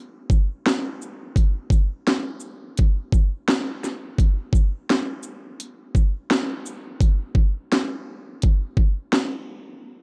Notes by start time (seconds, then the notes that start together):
0.30 kick, shaker
0.66 snare, closed hi-hat
1.02 shaker
1.36 kick, closed hi-hat
1.70 kick, closed hi-hat, shaker
2.07 snare, closed hi-hat
2.40 shaker
2.77 kick, closed hi-hat
3.12 kick, shaker
3.48 snare, closed hi-hat
3.84 snare, shaker
4.18 kick, closed hi-hat
4.53 kick, shaker
4.90 snare, closed hi-hat
5.23 shaker
5.60 closed hi-hat
5.95 kick, shaker
6.31 snare, closed hi-hat
6.66 shaker
7.01 kick, closed hi-hat
7.35 kick
7.72 snare, closed hi-hat
8.42 kick, closed hi-hat
8.77 kick
9.13 snare, closed hi-hat